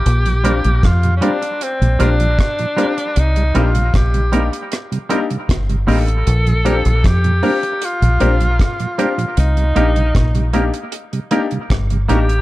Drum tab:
HH |xxxxxxxxxxxxxxxx|xxxxxxxxxxxxxxox|xxxxxxoxxxxxxxxx|xxxxxxxxxxxxxxxx|
SD |----r-------r---|----r---r---r---|----r-------r---|----r-------r---|
BD |----o-------o---|----o-------o---|----o-------o---|----o-------o---|